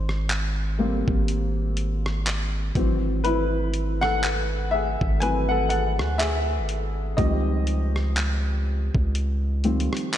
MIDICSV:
0, 0, Header, 1, 4, 480
1, 0, Start_track
1, 0, Tempo, 983607
1, 1584, Time_signature, 4, 2, 24, 8
1, 4965, End_track
2, 0, Start_track
2, 0, Title_t, "Grand piano"
2, 0, Program_c, 0, 0
2, 0, Control_c, 0, 64, 127
2, 0, Note_on_c, 0, 63, 65
2, 0, Note_on_c, 0, 72, 97
2, 384, Note_on_c, 0, 55, 58
2, 386, Note_on_c, 0, 58, 55
2, 389, Note_on_c, 0, 60, 63
2, 1084, Note_off_c, 0, 55, 0
2, 1085, Note_off_c, 0, 58, 0
2, 1087, Note_off_c, 0, 60, 0
2, 1344, Note_on_c, 0, 52, 60
2, 1347, Note_on_c, 0, 54, 55
2, 1350, Control_c, 0, 64, 0
2, 1350, Note_on_c, 0, 60, 65
2, 1351, Note_off_c, 0, 63, 0
2, 1352, Note_off_c, 0, 72, 0
2, 1445, Control_c, 0, 64, 127
2, 1580, Note_on_c, 0, 71, 97
2, 1591, Note_on_c, 0, 64, 78
2, 1947, Note_off_c, 0, 64, 0
2, 1959, Note_on_c, 0, 78, 118
2, 1970, Note_on_c, 0, 69, 75
2, 1972, Note_off_c, 0, 71, 0
2, 2044, Note_off_c, 0, 52, 0
2, 2046, Note_off_c, 0, 54, 0
2, 2047, Note_off_c, 0, 60, 0
2, 2287, Note_off_c, 0, 69, 0
2, 2299, Note_on_c, 0, 76, 100
2, 2309, Note_on_c, 0, 68, 76
2, 2312, Note_off_c, 0, 78, 0
2, 2524, Note_off_c, 0, 76, 0
2, 2530, Note_off_c, 0, 68, 0
2, 2540, Note_on_c, 0, 80, 116
2, 2545, Note_on_c, 0, 52, 52
2, 2546, Note_on_c, 0, 54, 49
2, 2548, Note_on_c, 0, 60, 60
2, 2550, Note_on_c, 0, 71, 89
2, 2671, Note_off_c, 0, 80, 0
2, 2676, Note_off_c, 0, 71, 0
2, 2677, Note_on_c, 0, 78, 96
2, 2688, Note_on_c, 0, 69, 80
2, 2764, Note_off_c, 0, 52, 0
2, 2765, Note_off_c, 0, 54, 0
2, 2766, Note_off_c, 0, 60, 0
2, 2770, Note_off_c, 0, 78, 0
2, 2778, Note_on_c, 0, 78, 101
2, 2779, Note_off_c, 0, 69, 0
2, 2788, Note_on_c, 0, 69, 82
2, 3003, Note_off_c, 0, 78, 0
2, 3009, Note_off_c, 0, 69, 0
2, 3017, Note_on_c, 0, 76, 99
2, 3028, Note_on_c, 0, 68, 78
2, 3486, Note_off_c, 0, 68, 0
2, 3498, Note_on_c, 0, 75, 94
2, 3501, Note_on_c, 0, 51, 57
2, 3503, Note_on_c, 0, 53, 56
2, 3505, Note_on_c, 0, 55, 53
2, 3508, Note_on_c, 0, 60, 64
2, 3508, Note_on_c, 0, 67, 70
2, 3510, Control_c, 0, 64, 0
2, 3515, Note_off_c, 0, 76, 0
2, 3582, Control_c, 0, 64, 127
2, 4203, Note_off_c, 0, 51, 0
2, 4204, Note_off_c, 0, 53, 0
2, 4205, Note_off_c, 0, 55, 0
2, 4206, Note_off_c, 0, 60, 0
2, 4705, Note_on_c, 0, 51, 51
2, 4706, Note_on_c, 0, 53, 49
2, 4707, Note_on_c, 0, 55, 47
2, 4708, Note_on_c, 0, 60, 58
2, 4921, Note_off_c, 0, 75, 0
2, 4925, Note_off_c, 0, 51, 0
2, 4925, Note_off_c, 0, 53, 0
2, 4926, Note_off_c, 0, 55, 0
2, 4926, Note_off_c, 0, 60, 0
2, 4926, Note_off_c, 0, 67, 0
2, 4965, End_track
3, 0, Start_track
3, 0, Title_t, "808-style bass"
3, 0, Program_c, 1, 38
3, 0, Note_on_c, 1, 32, 117
3, 503, Note_off_c, 1, 32, 0
3, 526, Note_on_c, 1, 32, 105
3, 1326, Note_off_c, 1, 32, 0
3, 1344, Note_on_c, 1, 32, 105
3, 2423, Note_off_c, 1, 32, 0
3, 2447, Note_on_c, 1, 32, 112
3, 2925, Note_on_c, 1, 38, 98
3, 2932, Note_off_c, 1, 32, 0
3, 3215, Note_on_c, 1, 32, 99
3, 3223, Note_off_c, 1, 38, 0
3, 3490, Note_off_c, 1, 32, 0
3, 3505, Note_on_c, 1, 37, 118
3, 4344, Note_off_c, 1, 37, 0
3, 4366, Note_on_c, 1, 37, 103
3, 4825, Note_off_c, 1, 37, 0
3, 4965, End_track
4, 0, Start_track
4, 0, Title_t, "Drums"
4, 44, Note_on_c, 9, 37, 68
4, 93, Note_off_c, 9, 37, 0
4, 143, Note_on_c, 9, 42, 68
4, 147, Note_on_c, 9, 39, 115
4, 192, Note_off_c, 9, 42, 0
4, 196, Note_off_c, 9, 39, 0
4, 526, Note_on_c, 9, 36, 93
4, 574, Note_off_c, 9, 36, 0
4, 626, Note_on_c, 9, 42, 69
4, 675, Note_off_c, 9, 42, 0
4, 863, Note_on_c, 9, 42, 67
4, 912, Note_off_c, 9, 42, 0
4, 1005, Note_on_c, 9, 37, 93
4, 1054, Note_off_c, 9, 37, 0
4, 1103, Note_on_c, 9, 42, 67
4, 1107, Note_on_c, 9, 39, 109
4, 1152, Note_off_c, 9, 42, 0
4, 1156, Note_off_c, 9, 39, 0
4, 1344, Note_on_c, 9, 36, 110
4, 1344, Note_on_c, 9, 42, 62
4, 1393, Note_off_c, 9, 36, 0
4, 1393, Note_off_c, 9, 42, 0
4, 1584, Note_on_c, 9, 42, 65
4, 1633, Note_off_c, 9, 42, 0
4, 1823, Note_on_c, 9, 42, 62
4, 1872, Note_off_c, 9, 42, 0
4, 1965, Note_on_c, 9, 37, 74
4, 2014, Note_off_c, 9, 37, 0
4, 2063, Note_on_c, 9, 42, 70
4, 2068, Note_on_c, 9, 39, 115
4, 2112, Note_off_c, 9, 42, 0
4, 2117, Note_off_c, 9, 39, 0
4, 2446, Note_on_c, 9, 36, 97
4, 2495, Note_off_c, 9, 36, 0
4, 2546, Note_on_c, 9, 42, 69
4, 2595, Note_off_c, 9, 42, 0
4, 2783, Note_on_c, 9, 42, 69
4, 2831, Note_off_c, 9, 42, 0
4, 2925, Note_on_c, 9, 37, 97
4, 2974, Note_off_c, 9, 37, 0
4, 3024, Note_on_c, 9, 42, 74
4, 3027, Note_on_c, 9, 39, 108
4, 3072, Note_off_c, 9, 42, 0
4, 3076, Note_off_c, 9, 39, 0
4, 3264, Note_on_c, 9, 42, 63
4, 3313, Note_off_c, 9, 42, 0
4, 3504, Note_on_c, 9, 36, 112
4, 3504, Note_on_c, 9, 42, 66
4, 3553, Note_off_c, 9, 36, 0
4, 3553, Note_off_c, 9, 42, 0
4, 3743, Note_on_c, 9, 42, 64
4, 3792, Note_off_c, 9, 42, 0
4, 3884, Note_on_c, 9, 37, 72
4, 3933, Note_off_c, 9, 37, 0
4, 3982, Note_on_c, 9, 42, 70
4, 3987, Note_on_c, 9, 39, 116
4, 4031, Note_off_c, 9, 42, 0
4, 4035, Note_off_c, 9, 39, 0
4, 4365, Note_on_c, 9, 36, 97
4, 4414, Note_off_c, 9, 36, 0
4, 4465, Note_on_c, 9, 42, 71
4, 4514, Note_off_c, 9, 42, 0
4, 4703, Note_on_c, 9, 42, 58
4, 4752, Note_off_c, 9, 42, 0
4, 4783, Note_on_c, 9, 42, 58
4, 4831, Note_off_c, 9, 42, 0
4, 4844, Note_on_c, 9, 37, 86
4, 4864, Note_on_c, 9, 42, 58
4, 4893, Note_off_c, 9, 37, 0
4, 4912, Note_off_c, 9, 42, 0
4, 4943, Note_on_c, 9, 42, 67
4, 4947, Note_on_c, 9, 39, 114
4, 4965, Note_off_c, 9, 39, 0
4, 4965, Note_off_c, 9, 42, 0
4, 4965, End_track
0, 0, End_of_file